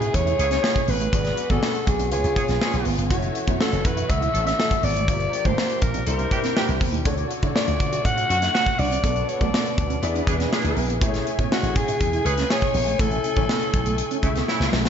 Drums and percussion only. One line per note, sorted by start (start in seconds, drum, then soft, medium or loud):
0.02 closed hi-hat medium
0.14 kick medium
0.14 closed hi-hat medium
0.27 closed hi-hat soft
0.39 closed hi-hat medium
0.51 snare soft
0.51 closed hi-hat medium
0.64 snare loud
0.76 kick medium
0.76 closed hi-hat medium
0.88 open hi-hat medium
1.01 closed hi-hat medium
1.13 kick loud
1.13 closed hi-hat loud
1.25 snare soft
1.25 closed hi-hat soft
1.37 closed hi-hat medium
1.50 kick medium
1.50 closed hi-hat soft
1.63 snare loud
1.75 closed hi-hat medium
1.87 kick loud
1.87 closed hi-hat medium
1.99 closed hi-hat medium
2.12 closed hi-hat medium
2.24 closed hi-hat medium
2.36 kick medium
2.36 closed hi-hat medium
2.48 snare soft
2.48 closed hi-hat medium
2.62 snare loud
2.73 closed hi-hat soft
2.85 open hi-hat medium
2.99 closed hi-hat medium
3.10 kick loud
3.10 closed hi-hat loud
3.22 closed hi-hat soft
3.35 closed hi-hat medium
3.47 kick medium
3.47 closed hi-hat soft
3.61 snare loud
3.72 closed hi-hat soft
3.85 kick loud
3.85 closed hi-hat medium
3.97 closed hi-hat medium
4.10 kick medium
4.10 closed hi-hat medium
4.22 closed hi-hat soft
4.35 closed hi-hat medium
4.47 snare soft
4.47 closed hi-hat medium
4.60 snare loud
4.71 kick medium
4.71 closed hi-hat medium
4.83 open hi-hat medium
4.96 closed hi-hat medium
5.08 kick loud
5.08 closed hi-hat loud
5.20 closed hi-hat soft
5.33 closed hi-hat medium
5.45 kick medium
5.45 closed hi-hat soft
5.58 snare loud
5.70 closed hi-hat soft
5.82 kick loud
5.82 closed hi-hat medium
5.94 closed hi-hat medium
6.07 closed hi-hat medium
6.19 closed hi-hat soft
6.31 kick loud
6.31 closed hi-hat medium
6.44 snare soft
6.44 closed hi-hat medium
6.57 snare loud
6.69 closed hi-hat soft
6.81 kick medium
6.81 open hi-hat medium
6.94 closed hi-hat medium
7.05 kick loud
7.05 closed hi-hat loud
7.17 closed hi-hat soft
7.31 closed hi-hat medium
7.43 kick medium
7.43 closed hi-hat soft
7.56 snare loud
7.68 closed hi-hat soft
7.80 kick loud
7.80 closed hi-hat medium
7.93 closed hi-hat medium
8.05 kick medium
8.05 closed hi-hat medium
8.18 closed hi-hat medium
8.30 closed hi-hat medium
8.42 snare soft
8.42 closed hi-hat medium
8.55 snare loud
8.66 kick medium
8.66 closed hi-hat soft
8.79 open hi-hat medium
8.92 closed hi-hat medium
9.04 kick loud
9.04 closed hi-hat loud
9.16 closed hi-hat soft
9.29 closed hi-hat medium
9.41 kick medium
9.41 closed hi-hat soft
9.54 snare loud
9.66 closed hi-hat medium
9.78 kick loud
9.78 closed hi-hat medium
9.90 closed hi-hat medium
10.03 closed hi-hat medium
10.15 closed hi-hat soft
10.27 kick loud
10.27 closed hi-hat medium
10.40 snare soft
10.40 closed hi-hat medium
10.53 snare loud
10.65 closed hi-hat medium
10.77 open hi-hat medium
10.90 closed hi-hat medium
11.02 kick loud
11.02 closed hi-hat loud
11.14 snare soft
11.14 closed hi-hat soft
11.27 closed hi-hat medium
11.39 kick medium
11.39 closed hi-hat soft
11.52 snare loud
11.64 closed hi-hat medium
11.76 kick medium
11.76 closed hi-hat medium
11.88 closed hi-hat medium
12.01 kick medium
12.01 closed hi-hat medium
12.13 closed hi-hat soft
12.26 closed hi-hat medium
12.38 snare soft
12.38 closed hi-hat medium
12.50 snare loud
12.62 kick medium
12.62 closed hi-hat medium
12.74 open hi-hat medium
12.88 closed hi-hat medium
12.99 kick loud
12.99 closed hi-hat loud
13.11 closed hi-hat soft
13.24 closed hi-hat medium
13.36 kick medium
13.36 closed hi-hat soft
13.49 snare loud
13.61 closed hi-hat soft
13.73 kick loud
13.73 closed hi-hat medium
13.86 closed hi-hat medium
13.98 closed hi-hat medium
14.11 closed hi-hat medium
14.23 kick medium
14.23 closed hi-hat medium
14.36 snare soft
14.36 closed hi-hat medium
14.48 snare medium
14.61 snare medium
14.73 snare loud
14.85 snare loud